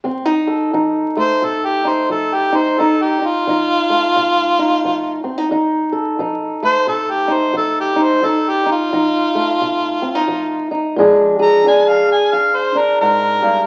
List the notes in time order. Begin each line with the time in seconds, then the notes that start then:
0.04 F2 C4
0.25 D#4
0.47 A4
0.73 F3 D#4
1.17 A3 C5
1.42 C3 A4
1.66 G4
1.85 D#4
1.89 C5
2.10 F3 A4
2.34 G4
2.52 D#4
2.57 C5
2.79 F2 D#4 A4
3.02 G4
3.22 D#4
3.26 F4
3.47 F3 D#4
3.90 A3
4.16 C3
4.59 D#4
4.85 F3
5.24 C4
5.38 D#4
5.51 F2 D#4
5.92 A4
6.19 F3 D#4
6.63 A3 C5
6.87 C3 A4
7.11 G4
7.28 D#4
7.34 C5
7.54 F3 A4
7.80 G4
7.96 D#4
8.03 C5
8.23 F2 D#4 A4
8.49 G4
8.66 D#4
8.72 F4
8.93 F3 D#4
9.35 A3
9.61 C3
10.02 C4
10.15 D#4
10.28 F3
10.71 D#4
10.96 A#2 F3 G#3 D4 G#4
11.39 G#4 A#5
11.66 F3 D4 G#5
11.89 F5
12.12 G#5
12.33 F2 F5
12.56 C5
12.75 D4 A#4
13.01 G#2 A#4
13.42 G2